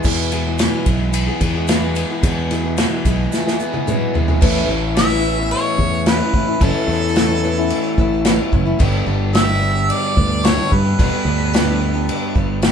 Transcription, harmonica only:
4.96 5.48 E5 loud
5.52 6.03 C#5 loud
6.08 6.64 B4 loud
6.63 8.26 A4 medium
9.35 9.92 E5 loud
9.90 10.47 D5 loud
10.45 10.74 C#5 loud
10.73 12.63 B4 loud

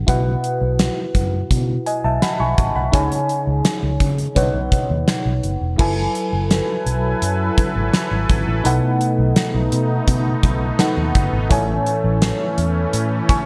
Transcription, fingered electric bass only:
0.08 0.35 B1 loud
0.61 0.88 B1 medium
1.15 1.42 F#2 medium
1.51 1.78 B2 medium
2.04 2.18 B1 medium
2.40 2.53 B1 medium
2.58 2.71 A1 medium
2.76 2.89 B1 medium
2.93 3.07 C#2 loud
3.47 3.61 C#2 medium
3.83 3.96 C#2 medium
4.00 4.27 C#3 medium
4.36 4.50 B1 medium
4.54 4.68 B1 medium
4.90 5.03 D#2 medium
5.26 5.39 B1 medium
5.43 5.57 F#1 medium
5.61 5.75 E1 medium
5.79 6.06 F#1 loud
6.33 6.60 F#1 medium
6.86 7.13 B1 medium
7.22 7.49 F#2 medium
7.76 7.89 G#1 medium
8.11 8.25 G#1 medium
8.30 8.43 G#1 medium
8.47 8.61 A1 medium
8.65 8.78 B1 loud
9.19 9.32 B1 medium
9.54 9.68 B1 medium
9.72 9.99 B2 medium
10.08 10.35 B2 medium
10.43 10.70 B1 medium
10.97 11.10 D#2 medium
11.15 11.29 F#1 medium
11.33 11.46 G#1 medium
11.51 11.77 A1 loud
12.04 12.31 A1 loud
12.58 12.85 E2 medium
12.93 13.20 A2 loud

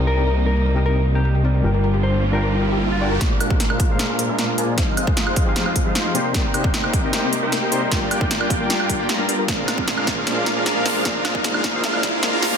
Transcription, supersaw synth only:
3.21 3.48 G#3 medium
3.21 3.48 D4 medium
3.21 3.48 F4 medium
3.21 3.48 A#4 medium
3.21 3.48 F5 medium
3.51 3.68 G#3 medium
3.51 3.68 D4 medium
3.51 3.68 F4 medium
3.51 3.68 A#4 medium
3.51 3.68 F5 medium
3.70 3.97 G#3 medium
3.70 3.97 D4 medium
3.70 3.97 F4 medium
3.70 3.97 A#4 medium
3.70 3.97 F5 loud
3.99 4.16 G#3 medium
3.99 4.16 D4 medium
3.99 4.16 F4 medium
3.99 4.16 A#4 medium
3.99 4.16 F5 medium
4.29 4.56 G#3 medium
4.29 4.56 D4 medium
4.29 4.56 F4 medium
4.29 4.56 A#4 medium
4.29 4.56 F5 medium
4.58 4.69 G#3 medium
4.58 4.69 D4 medium
4.58 4.69 F4 medium
4.58 4.69 A#4 medium
4.58 4.69 G#5 medium
4.78 5.05 G#3 medium
4.78 5.05 D#4 medium
4.78 5.05 F4 medium
4.78 5.05 C5 medium
4.78 5.05 F5 loud
5.07 5.25 D#4 medium
5.07 5.25 F4 medium
5.07 5.25 C5 medium
5.07 5.25 F5 medium
5.27 5.54 G#3 medium
5.27 5.54 D#4 medium
5.27 5.54 F4 medium
5.27 5.54 C5 medium
5.27 5.54 F5 loud
5.56 5.73 G#3 medium
5.56 5.73 D#4 medium
5.56 5.73 F4 medium
5.56 5.73 C5 medium
5.56 5.73 F5 medium
5.86 6.13 G#3 medium
5.86 6.13 D#4 medium
5.86 6.13 F4 medium
5.86 6.13 C5 medium
5.86 6.13 F5 medium
6.15 6.26 A#3 medium
6.15 6.26 D#4 medium
6.15 6.26 G4 medium
6.15 6.26 C5 medium
6.15 6.26 C6 medium
6.64 6.82 D#4 medium
6.64 6.82 G4 medium
6.64 6.82 C5 medium
6.64 6.82 G5 medium
6.84 7.11 A#3 medium
6.84 7.11 D#4 medium
6.84 7.11 G4 medium
6.84 7.11 C5 medium
6.84 7.11 G5 loud
7.13 7.30 A#3 medium
7.13 7.30 D#4 medium
7.13 7.30 G4 medium
7.13 7.30 C5 medium
7.13 7.30 G5 medium
7.43 7.70 A#3 medium
7.43 7.70 D#4 medium
7.43 7.70 G4 medium
7.43 7.70 C5 medium
7.43 7.70 G5 medium
7.72 7.83 A#3 medium
7.72 7.83 D#4 medium
7.72 7.83 G4 medium
7.72 7.83 C5 medium
7.72 7.83 C6 medium
7.91 8.19 A#3 medium
7.91 8.19 F4 medium
7.91 8.19 G4 medium
7.91 8.19 D5 medium
8.21 8.38 A#3 medium
8.21 8.38 F4 medium
8.21 8.38 G4 medium
8.21 8.38 D5 medium
8.21 8.38 G5 medium
8.41 8.68 A#3 medium
8.41 8.68 F4 medium
8.41 8.68 G4 medium
8.41 8.68 D5 medium
8.41 8.68 G5 loud
8.70 8.87 A#3 medium
8.70 8.87 F4 medium
8.70 8.87 G4 medium
8.70 8.87 D5 medium
8.70 8.87 G5 medium
8.99 9.07 A#3 loud
8.99 9.07 F4 medium
8.99 9.07 G4 medium
8.99 9.07 D5 medium
8.99 9.07 G5 loud
9.09 9.20 A#3 medium
9.09 9.20 F4 medium
9.09 9.20 G4 medium
9.09 9.20 D5 medium
9.09 9.20 A#5 medium
9.48 9.76 G#3 medium
9.48 9.76 D4 medium
9.48 9.76 F4 medium
9.48 9.76 A#4 medium
9.48 9.76 F5 medium
9.78 9.95 G#3 medium
9.78 9.95 D4 medium
9.78 9.95 F4 medium
9.78 9.95 A#4 medium
9.78 9.95 F5 medium
9.98 10.25 G#3 medium
9.98 10.25 D4 medium
9.98 10.25 F4 medium
9.98 10.25 A#4 medium
9.98 10.25 F5 medium
10.27 10.54 G#3 medium
10.27 10.54 D4 medium
10.27 10.54 F4 medium
10.27 10.54 A#4 medium
10.27 10.54 F5 medium
10.56 10.74 G#3 medium
10.56 10.74 D4 medium
10.56 10.74 F4 medium
10.56 10.74 A#4 medium
10.56 10.74 F5 medium
10.76 11.03 G#3 medium
10.76 11.03 D4 medium
10.76 11.03 F4 medium
10.76 11.03 A#4 medium
10.76 11.03 F5 loud
11.05 11.32 G#3 medium
11.05 11.32 D4 medium
11.05 11.32 F4 medium
11.05 11.32 A#4 medium
11.05 11.32 F5 medium
11.35 11.52 G#3 medium
11.35 11.52 D4 medium
11.35 11.52 F4 medium
11.35 11.52 A#4 medium
11.35 11.52 F5 medium
11.55 11.81 G#3 medium
11.55 11.81 D4 medium
11.55 11.81 F4 medium
11.55 11.81 A#4 medium
11.55 11.81 F5 loud
11.84 12.11 G#3 medium
11.84 12.11 D4 medium
11.84 12.11 F4 medium
11.84 12.11 A#4 medium
11.84 12.11 F5 loud
12.13 12.31 G#3 medium
12.13 12.31 D4 medium
12.13 12.31 F4 medium
12.13 12.31 A#4 medium
12.13 12.31 F5 medium
12.33 12.57 G#3 loud
12.33 12.57 D4 medium
12.33 12.57 F4 medium
12.33 12.57 A#4 medium
12.33 12.57 F5 loud

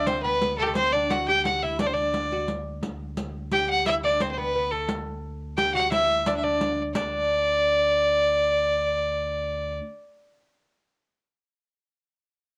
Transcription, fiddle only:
0.07 0.22 C5 loud
0.23 0.55 B4 loud
0.58 0.64 A4 medium
0.63 0.68 G4 medium
0.63 0.74 A4 medium
0.75 0.94 C5 loud
0.92 1.12 D5 loud
1.10 1.27 F#5 medium
1.28 1.44 G5 loud
1.45 1.64 F#5 loud
1.62 1.80 E5 medium
1.81 1.88 D5 loud
1.87 1.94 C5 medium
1.93 2.48 D5 medium
3.52 3.68 G5 loud
3.70 3.85 F#5 loud
3.86 3.94 E5 loud
4.04 4.23 D5 medium
4.21 4.30 C5 medium
4.31 4.39 C5 medium
4.38 4.72 B4 medium
4.71 4.89 A4 medium
5.57 5.73 G5 loud
5.74 5.91 F#5 loud
5.92 6.29 E5 loud
6.27 6.36 D5 medium
6.37 6.45 E5 medium
6.44 6.82 D5 medium
6.94 9.76 D5 loud

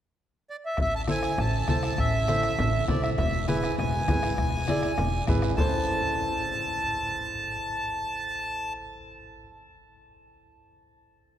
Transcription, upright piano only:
1.08 1.29 E4 medium
1.08 1.29 A4 medium
1.08 1.29 C5 medium
1.68 1.89 E4 medium
1.68 1.89 A4 medium
1.68 1.90 C5 medium
2.28 2.49 E4 medium
2.28 2.49 A4 medium
2.28 2.49 C5 medium
2.88 3.09 E4 medium
2.88 3.09 A4 medium
2.88 3.09 C5 medium
3.48 3.69 E4 medium
3.48 3.69 G#4 medium
3.48 3.69 B4 medium
4.08 4.29 E4 medium
4.08 4.29 G#4 medium
4.08 4.30 B4 medium
4.68 4.89 E4 medium
4.68 4.89 G#4 medium
4.68 4.89 D5 loud
5.28 5.49 E4 medium
5.28 5.49 G#4 medium
5.28 5.49 B4 medium
5.56 9.43 E4 medium
5.56 9.44 A4 medium
5.60 9.45 C5 medium

